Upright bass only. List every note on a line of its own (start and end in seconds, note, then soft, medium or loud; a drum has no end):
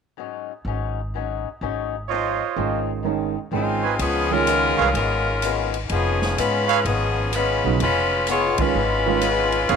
0.65 1.43 G#1 medium
1.61 2.40 G#1 medium
2.56 3.35 G#1 medium
3.52 3.96 G#1 medium
3.99 4.74 C#2 medium
4.79 4.93 C2 medium
4.94 5.86 G#1 medium
5.90 6.34 F1 medium
6.38 6.82 G#2 medium
6.85 7.60 G#1 medium
7.64 7.79 B1 medium
7.80 8.55 F1 medium
8.58 muted upright bass stroke soft
8.74 9.65 G#1 medium
9.69 9.76 F1 medium